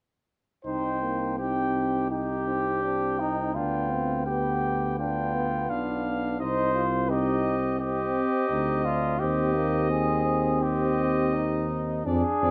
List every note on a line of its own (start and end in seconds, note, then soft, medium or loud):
0.65 3.56 C2 soft
0.65 1.35 D#4 soft
0.65 1.00 D#4 medium
0.65 1.35 C5 medium
0.65 1.35 G5 soft
1.02 1.41 A#3 medium
1.38 2.10 C4 soft
1.38 2.10 D#4 soft
1.38 2.09 G4 medium
1.38 2.09 G5 soft
2.11 2.46 D#4 soft
2.11 2.85 D#4 soft
2.11 3.21 G4 medium
2.11 3.52 G5 medium
2.47 2.83 C4 soft
2.83 3.55 C4 soft
2.83 3.21 D4 medium
3.19 3.56 D#4 medium
3.19 3.55 D#4 medium
3.55 5.70 D2 medium
3.55 4.26 B3 soft
3.55 3.93 D4 medium
3.55 4.26 F4 medium
3.55 4.26 G5 soft
3.91 4.27 C4 soft
4.26 4.98 B3 soft
4.26 4.97 G4 medium
4.26 4.97 G5 soft
4.99 6.37 B3 soft
4.99 5.34 D4 medium
4.99 6.03 F4 medium
4.99 5.71 G5 medium
5.35 5.69 B3 soft
5.70 6.42 B1 soft
5.70 6.42 D4 medium
5.70 6.39 F5 soft
6.40 8.24 C2 medium
6.40 6.85 C4 soft
6.40 6.75 D#4 medium
6.40 7.11 C5 medium
6.40 6.85 D#5 soft
6.75 7.10 F4 medium
7.10 7.76 C4 soft
7.10 7.55 D#4 medium
7.10 7.79 G4 medium
7.10 7.76 D#5 medium
7.80 8.52 C4 medium
7.80 9.18 C4 medium
7.80 8.86 G4 medium
7.80 9.17 D#5 medium
8.51 9.22 D2 medium
8.51 8.87 D#4 medium
8.85 9.19 D4 medium
8.85 9.21 F4 medium
9.19 12.05 D#2 medium
9.19 9.57 C4 medium
9.19 10.60 C4 medium
9.19 9.90 G4 medium
9.19 10.59 D#5 medium
9.55 9.92 A#3 medium
9.91 10.26 C4 medium
9.91 10.64 G#4 medium
10.26 11.36 C4 medium
10.61 12.03 C4 medium
10.61 11.70 G4 medium
10.61 12.02 D#5 medium
11.34 12.07 D#4 medium
12.05 12.22 F2 medium
12.05 12.22 C4 medium
12.05 12.51 D4 medium
12.05 12.51 G#4 medium
12.05 12.22 D5 medium
12.42 12.51 F2 medium
12.42 12.51 C4 medium
12.42 12.51 D5 medium